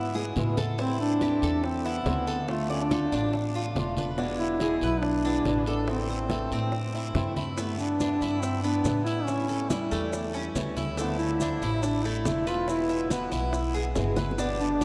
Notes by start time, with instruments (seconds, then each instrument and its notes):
Already playing: upright bass G#2, duduk B3, cuban tres E4
0.14 steel-string acoustic guitar G#3 B3 E4, cuban tres G#4, high bongo, high conga
0.36 upright bass A2, steel-string acoustic guitar B2 E3 G#3 B3 E4, low bongo, high conga, short guiro
0.57 steel-string acoustic guitar G#3 B3 E4, cuban tres A4, low bongo, high conga, short guiro
0.78 steel-string acoustic guitar E3 G3 C4 E4, duduk C4, cuban tres E4, high bongo, high conga, long guiro
1.00 duduk D4, high conga
1.20 steel-string acoustic guitar E3 G3 C4 E4, cuban tres G4, high bongo, high conga, short guiro
1.42 upright bass E2, cuban tres A4, high conga, short guiro
1.64 duduk C4, muted steel-string acoustic guitar stroke, high bongo, high conga, long guiro
1.85 steel-string acoustic guitar G3 C4 E4, duduk B3, cuban tres E4, high conga
2.04 upright bass D2, steel-string acoustic guitar E3 G3 C4 E4, high bongo, low bongo, high conga, short guiro
2.26 steel-string acoustic guitar G3 C4 E4, cuban tres A4, short guiro
2.47 steel-string acoustic guitar D3 A3 D4 F4, duduk A3, high bongo, high conga, long guiro
2.70 duduk D4, cuban tres D5, high bongo, high conga
2.90 steel-string acoustic guitar D3 A3 D4 F4, cuban tres A4, high bongo, high conga, short guiro
3.12 upright bass A1, cuban tres D4, high bongo, short guiro
3.33 muted steel-string acoustic guitar stroke, high bongo, high conga, long guiro
3.55 steel-string acoustic guitar A3 D4 F4, cuban tres F4, high conga
3.75 upright bass E1, steel-string acoustic guitar D3 A3 D4 F4, high bongo, low bongo, high conga, short guiro
3.97 steel-string acoustic guitar A3 D4 F4, cuban tres B4, high bongo, high conga, short guiro
4.18 steel-string acoustic guitar B2 D3 G#3 B3 E4, duduk B3, cuban tres D4, high bongo, high conga, long guiro
4.39 duduk E4, high conga
4.60 steel-string acoustic guitar B2 D3 G#3 B3 E4, cuban tres G#4, high bongo, high conga, short guiro
4.81 upright bass B1, cuban tres B4, high conga, short guiro
5.02 duduk D4, muted steel-string acoustic guitar stroke, high bongo, high conga, long guiro
5.24 steel-string acoustic guitar G#3 B3 E4, cuban tres D4, high conga
5.45 upright bass A1, steel-string acoustic guitar B2 D3 G#3 B3 E4, high bongo, low bongo, high conga, short guiro
5.66 steel-string acoustic guitar G#3 B3 E4, duduk D4, cuban tres A4, short guiro
5.87 steel-string acoustic guitar E3 A3 C4 E4, duduk C4, high bongo, high conga, long guiro
6.09 cuban tres C5, high bongo, high conga
6.28 steel-string acoustic guitar E3 A3 C4 E4, cuban tres A4, high bongo, high conga, short guiro
6.51 upright bass A2, cuban tres C4, high bongo, short guiro
6.72 muted steel-string acoustic guitar stroke, high bongo, high conga, long guiro
6.93 steel-string acoustic guitar A3 C4 E4, cuban tres E4, high conga
7.14 upright bass G2, steel-string acoustic guitar E3 A3 C4 E4, high bongo, low bongo, high conga, short guiro
7.36 steel-string acoustic guitar A3 C4 E4, cuban tres E4, high bongo, high conga, short guiro
7.56 steel-string acoustic guitar G3 B3 E4, duduk A3, cuban tres B3, high bongo, high conga, long guiro, maracas
7.78 duduk D4, high conga, maracas
7.99 steel-string acoustic guitar G3 B3 E4, cuban tres D4, high bongo, high conga, short guiro, maracas
8.21 upright bass G2, cuban tres E4, high conga, short guiro, maracas
8.41 duduk C4, muted steel-string acoustic guitar stroke, high bongo, high conga, long guiro, maracas
8.62 cuban tres B3, steel-string acoustic guitar B3 E4, duduk D4, high conga, maracas
8.84 upright bass A2, steel-string acoustic guitar G3 B3 E4, high bongo, low bongo, high conga, short guiro, maracas
9.04 duduk E4, steel-string acoustic guitar E4, cuban tres E4, short guiro, maracas
9.09 steel-string acoustic guitar B3
9.25 steel-string acoustic guitar E3, duduk C#4, high bongo, high conga, long guiro, maracas
9.29 steel-string acoustic guitar G3 C#4 E4
9.49 cuban tres A4, high bongo, high conga, maracas
9.69 steel-string acoustic guitar E3 G3 C#4 E4, duduk G3, cuban tres E4, high bongo, high conga, short guiro, maracas
9.91 upright bass E2, cuban tres A3, high bongo, short guiro, maracas
10.12 muted steel-string acoustic guitar stroke, high bongo, high conga, long guiro, maracas
10.34 steel-string acoustic guitar G3 C#4 E4, cuban tres C#4, high conga, maracas
10.55 upright bass D2, steel-string acoustic guitar E3 G3 C#4 E4, high bongo, low bongo, high conga, short guiro, maracas
10.77 steel-string acoustic guitar G3 C#4 E4, cuban tres E4, high bongo, high conga, short guiro, maracas
10.97 steel-string acoustic guitar D3 F3 A3 D4 E4, cuban tres A3, duduk B3, high bongo, high conga, long guiro, maracas
11.18 duduk E4, high conga, maracas
11.40 steel-string acoustic guitar D3 F3 A3 D4 E4, cuban tres D4, high bongo, high conga, short guiro, maracas
11.62 upright bass A1, cuban tres E4, high conga, short guiro, maracas
11.83 duduk D4, muted steel-string acoustic guitar stroke, high bongo, high conga, long guiro, maracas
12.04 cuban tres A3, steel-string acoustic guitar A3 D4 E4, duduk E4, high conga, maracas
12.25 upright bass E1, steel-string acoustic guitar D3 F3 A3 D4 E4, high bongo, low bongo, high conga, short guiro, maracas
12.47 steel-string acoustic guitar A3 D4 E4, duduk F4, cuban tres B4, short guiro, maracas
12.67 steel-string acoustic guitar B2 E3 G#3 B3 E4, duduk E4, high bongo, high conga, long guiro, maracas
12.89 cuban tres E5, high bongo, high conga, maracas
13.10 steel-string acoustic guitar B2 E3 G#3 B3 E4, duduk B3, cuban tres B4, high bongo, high conga, short guiro, maracas
13.31 upright bass B1, cuban tres E4, high bongo, short guiro, maracas
13.53 muted steel-string acoustic guitar stroke, high bongo, high conga, long guiro, maracas
13.74 steel-string acoustic guitar G#3 B3 E4, cuban tres G#4, high conga, maracas
13.95 upright bass G1, steel-string acoustic guitar B2 E3 G#3 B3 E4, high bongo, low bongo, high conga, short guiro, maracas
14.16 steel-string acoustic guitar B3 E4, cuban tres B4, high bongo, high conga, short guiro, maracas
14.20 steel-string acoustic guitar G#3
14.31 low bongo
14.38 steel-string acoustic guitar B2 D3 G3 B3 G4, duduk B3, cuban tres D4, high bongo, high conga, long guiro, maracas
14.60 duduk D4, high conga, maracas
14.81 high bongo, high conga, short guiro, maracas